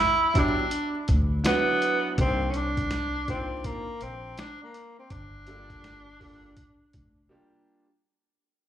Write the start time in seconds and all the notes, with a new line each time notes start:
Already playing: E4
0.34 F#3 B3 D4 E4 G4, kick, closed hi-hat
0.38 D4
0.71 closed hi-hat
1.08 D2, kick, closed hi-hat
1.44 F#3 B3 D4 E4 F#4, snare, closed hi-hat
1.82 closed hi-hat
2.17 C2 D#3 A#3 C4 D4 G4, kick, closed hi-hat
2.51 C#4, closed hi-hat
2.57 D4
2.77 kick, closed hi-hat
2.91 snare, closed hi-hat
3.28 D#3 A#3 C4 D4 F4, kick, closed hi-hat
3.64 A#3, kick, closed hi-hat
4.01 A#1 C4, closed hi-hat
4.38 D4, snare, closed hi-hat
4.63 A#3
4.74 closed hi-hat
4.99 C4
5.10 G1 D4, kick, closed hi-hat
5.47 G3 A3 D4 F4 A4, closed hi-hat
5.54 A#3
5.70 kick, closed hi-hat
5.84 snare, closed hi-hat
6.20 G3 A#3 D4 F4 A4, kick, open hi-hat
6.57 kick, closed hi-hat
6.93 F1, kick, closed hi-hat
7.29 G3 A#3 D4 F4 G4